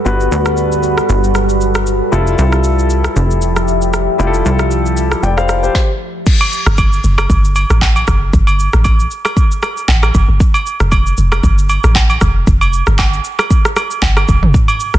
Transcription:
Already playing: G3 F#4 A4 B4
0.05 G1 G3 B3 F#4 B4, shaker
0.20 shaker
0.32 D2, shaker
0.46 cross-stick, shaker
0.57 shaker
0.72 shaker
0.83 shaker
0.98 cross-stick, shaker
1.09 G1, shaker
1.24 shaker
1.35 cross-stick, shaker
1.49 shaker
1.61 shaker
1.75 cross-stick, shaker
1.87 shaker
2.11 F1 F3 G3 E4 F4 G4 A4 E5, shaker
2.27 shaker
2.39 C2, shaker
2.52 cross-stick, shaker
2.64 shaker
2.79 shaker
2.90 shaker
3.04 cross-stick, shaker
3.16 F1, shaker
3.31 shaker
3.42 shaker
3.56 cross-stick, shaker
3.68 shaker
3.82 shaker
3.94 cross-stick, shaker
4.18 F1 G3 E4 F4 G4, shaker
4.27 A4
4.34 shaker
4.46 C2, shaker
4.59 cross-stick, shaker
4.71 shaker
4.86 shaker
4.97 shaker
5.12 cross-stick, shaker
5.23 F1 D5 G5, shaker
5.37 C5 F5, cross-stick, shaker
5.49 cross-stick, shaker
5.63 G4 C5, shaker
5.75 kick, snare
6.27 kick, crash, shaker
6.41 high agogo, shaker
6.53 shaker
6.66 G1, cross-stick, shaker
6.78 kick, high agogo, shaker
6.93 shaker
7.04 F#1, shaker
7.18 cross-stick, high agogo, shaker
7.30 G1, kick, shaker
7.45 shaker
7.56 high agogo, shaker
7.70 A1, cross-stick, shaker
7.81 kick, clap, low woodblock, shaker
7.96 high agogo, shaker
8.08 F#1, kick, cross-stick, shaker
8.33 G1, kick, shaker
8.47 high agogo, shaker
8.60 shaker
8.73 A1, cross-stick, shaker
8.84 kick, high agogo, shaker
9.00 shaker
9.11 shaker
9.25 cross-stick, high agogo, shaker
9.37 kick, shaker
9.52 shaker
9.63 cross-stick, high agogo, shaker
9.77 shaker
9.88 A1, kick, clap, low woodblock, shaker
10.03 cross-stick, high agogo, shaker
10.14 F#1, kick, shaker
10.29 G1
10.40 kick, shaker
10.54 high agogo, shaker
10.66 shaker
10.80 F1, cross-stick, shaker
10.92 kick, high agogo, shaker
11.06 shaker
11.18 F1, shaker
11.32 cross-stick, high agogo, shaker
11.43 G1, kick, shaker
11.58 shaker
11.69 high agogo, shaker
11.84 A1, cross-stick, shaker
11.95 kick, clap, low woodblock, shaker
12.10 high agogo, shaker
12.21 F1, kick, cross-stick, shaker
12.47 F1, kick, shaker
12.61 high agogo, shaker
12.73 shaker
12.87 G1, cross-stick, shaker
12.98 kick, clap, high agogo, low woodblock, shaker
13.13 shaker
13.25 shaker
13.39 cross-stick, high agogo, shaker
13.51 kick, shaker
13.65 cross-stick, shaker
13.76 cross-stick, high agogo, shaker
13.91 shaker
14.02 G1, kick, clap, low woodblock, shaker
14.16 cross-stick, high agogo, shaker
14.28 F1, kick, shaker
14.43 G1, mid tom
14.54 kick, shaker
14.68 high agogo, shaker
14.80 shaker
14.94 G1, cross-stick, shaker

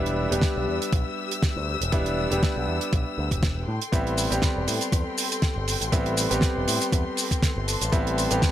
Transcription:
Already playing: E1 G3 B3 D4 E4 G4 E5 E6
0.06 closed hi-hat
0.30 E1 G3 B3 D4 G4, closed hi-hat
0.42 kick, snare, closed hi-hat
0.56 B1
0.68 E2
0.82 closed hi-hat
0.93 B1, kick, closed hi-hat
1.31 closed hi-hat
1.42 kick, snare, closed hi-hat
1.56 D2
1.81 E1, closed hi-hat
1.92 E1 G3 B3 D4 E4, kick, closed hi-hat
2.06 closed hi-hat
2.30 E1 G3 B3 D4 G4, closed hi-hat
2.43 kick, snare, closed hi-hat
2.56 B1
2.68 E2
2.81 closed hi-hat
2.93 B1, kick, closed hi-hat
3.18 D2
3.31 E1, kick, closed hi-hat
3.43 kick, snare, closed hi-hat
3.68 A2 A4 G5 C6
3.82 closed hi-hat
3.92 A1 G3 B3 C4 E4, kick, closed hi-hat, shaker
4.07 closed hi-hat
4.18 open hi-hat, shaker
4.30 A1 G3 B3 C4 G4, closed hi-hat, shaker
4.42 kick, snare, closed hi-hat, shaker
4.56 E1
4.68 A2, open hi-hat, shaker
4.81 closed hi-hat, shaker
4.92 E2, kick, closed hi-hat, shaker
5.18 open hi-hat, shaker
5.32 closed hi-hat, shaker
5.42 kick, snare, closed hi-hat, shaker
5.56 G1
5.68 open hi-hat, shaker
5.81 A1, closed hi-hat, shaker
5.92 A1 G3 B3 C4 E4, kick, closed hi-hat, shaker
6.06 closed hi-hat
6.17 open hi-hat, shaker
6.30 A1 G3 B3 C4 G4, closed hi-hat, shaker
6.41 kick, snare, closed hi-hat, shaker
6.56 E1
6.68 A2, open hi-hat, shaker
6.81 closed hi-hat, shaker
6.92 E2, kick, closed hi-hat, shaker
7.17 open hi-hat, shaker
7.31 kick, closed hi-hat, shaker
7.42 kick, snare, closed hi-hat, shaker
7.56 G1
7.68 A5, open hi-hat, shaker
7.81 A1, closed hi-hat, shaker
7.92 A1 G3 B3 C4 E4, kick, closed hi-hat, shaker
8.07 closed hi-hat
8.18 open hi-hat, shaker
8.30 A1 G3 B3 C4 G4, closed hi-hat, shaker
8.42 kick, snare, closed hi-hat, shaker

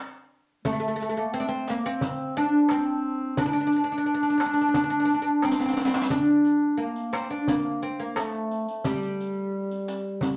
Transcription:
0.65 A3, riq, darbuka dum
0.73 A3
0.80 A3
0.88 A3
0.96 A3
1.00 A3, riq
1.09 A3
1.17 A3 A#3
1.33 C4
1.40 D4
1.48 C4, darbuka ka
1.68 A#3, riq
1.73 A#3 C4
1.84 C4, darbuka ka
2.01 riq, darbuka dum
2.18 darbuka ka
2.35 D4, darbuka ka
2.64 D4
2.69 C4, riq, darbuka tek
3.37 D4, riq, darbuka dum
3.46 D4 D#4
3.52 D4, riq
3.61 D4
3.67 D4
3.72 riq, darbuka ka
3.76 D4
3.84 D4
3.92 D4
3.98 D4
4.06 D4
4.14 D4
4.23 D4, riq, darbuka ka
4.30 D4
4.38 D4, riq, darbuka tek
4.46 D4
4.54 D4, darbuka ka
4.58 D4, riq
4.69 D4
4.74 D4, riq, darbuka dum
4.84 D4
4.90 D4, darbuka ka
5.00 D4
5.05 D4, riq, darbuka ka
5.14 D4
5.22 D4
5.42 C4, riq, darbuka tek
5.51 C4, riq
5.59 C4, riq, darbuka ka
5.66 C4, riq
5.73 C4, riq, darbuka ka
5.82 C4, riq
5.87 C4
5.94 C4, riq, darbuka ka
6.02 riq
6.10 D4, riq, darbuka dum
6.45 riq
6.77 A#3
6.96 riq
7.13 C4, riq, darbuka tek
7.31 D4
7.48 A#3, riq, darbuka dum
7.65 darbuka ka
7.82 C4, darbuka ka
8.00 A#3
8.16 A3, riq, darbuka tek
8.34 darbuka ka
8.51 riq, darbuka ka
8.68 A3, riq
8.84 G3, riq, darbuka dum
9.03 riq
9.21 riq
9.71 riq
9.88 riq
10.21 riq, darbuka dum

